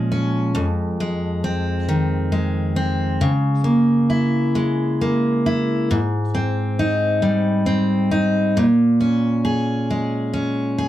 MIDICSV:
0, 0, Header, 1, 2, 480
1, 0, Start_track
1, 0, Key_signature, -4, "major"
1, 0, Tempo, 887574
1, 302, Time_signature, 6, 3, 24, 8
1, 5886, End_track
2, 0, Start_track
2, 0, Title_t, "Steel-string acoustic guitar"
2, 0, Program_c, 0, 25
2, 0, Note_on_c, 0, 46, 62
2, 0, Note_on_c, 0, 53, 49
2, 0, Note_on_c, 0, 56, 43
2, 0, Note_on_c, 0, 61, 46
2, 56, Note_off_c, 0, 61, 0
2, 63, Note_on_c, 0, 61, 53
2, 296, Note_on_c, 0, 41, 67
2, 299, Note_off_c, 0, 46, 0
2, 350, Note_off_c, 0, 61, 0
2, 540, Note_off_c, 0, 56, 0
2, 543, Note_on_c, 0, 56, 49
2, 779, Note_on_c, 0, 60, 47
2, 1017, Note_off_c, 0, 53, 0
2, 1020, Note_on_c, 0, 51, 46
2, 1253, Note_off_c, 0, 56, 0
2, 1255, Note_on_c, 0, 56, 45
2, 1487, Note_off_c, 0, 60, 0
2, 1494, Note_on_c, 0, 60, 52
2, 1735, Note_off_c, 0, 41, 0
2, 1736, Note_on_c, 0, 49, 58
2, 1785, Note_off_c, 0, 60, 0
2, 1787, Note_off_c, 0, 51, 0
2, 1967, Note_off_c, 0, 56, 0
2, 1970, Note_on_c, 0, 58, 42
2, 2216, Note_on_c, 0, 64, 46
2, 2462, Note_on_c, 0, 56, 44
2, 2699, Note_off_c, 0, 58, 0
2, 2712, Note_on_c, 0, 58, 44
2, 2944, Note_off_c, 0, 64, 0
2, 2954, Note_on_c, 0, 64, 48
2, 3187, Note_off_c, 0, 49, 0
2, 3195, Note_on_c, 0, 44, 57
2, 3240, Note_off_c, 0, 58, 0
2, 3240, Note_off_c, 0, 64, 0
2, 3432, Note_on_c, 0, 60, 42
2, 3673, Note_on_c, 0, 63, 48
2, 3903, Note_off_c, 0, 56, 0
2, 3905, Note_on_c, 0, 55, 44
2, 4137, Note_off_c, 0, 60, 0
2, 4144, Note_on_c, 0, 60, 42
2, 4382, Note_off_c, 0, 63, 0
2, 4388, Note_on_c, 0, 63, 50
2, 4634, Note_off_c, 0, 44, 0
2, 4634, Note_on_c, 0, 46, 59
2, 4675, Note_off_c, 0, 60, 0
2, 4676, Note_off_c, 0, 55, 0
2, 4677, Note_off_c, 0, 63, 0
2, 4870, Note_on_c, 0, 61, 46
2, 5109, Note_on_c, 0, 68, 45
2, 5357, Note_on_c, 0, 56, 44
2, 5583, Note_off_c, 0, 61, 0
2, 5589, Note_on_c, 0, 61, 44
2, 5830, Note_off_c, 0, 68, 0
2, 5832, Note_on_c, 0, 68, 51
2, 5886, Note_off_c, 0, 46, 0
2, 5886, Note_off_c, 0, 56, 0
2, 5886, Note_off_c, 0, 61, 0
2, 5886, Note_off_c, 0, 68, 0
2, 5886, End_track
0, 0, End_of_file